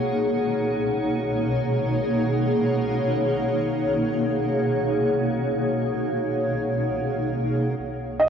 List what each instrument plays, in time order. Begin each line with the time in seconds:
Already playing: ambient pad B2 A#3 D#4 G#4 C#5 F#5
7.78 analog synth bass B1, ambient pad G#3
7.86 ambient pad C#4
8.20 felt piano D#5
8.24 ambient pad F#4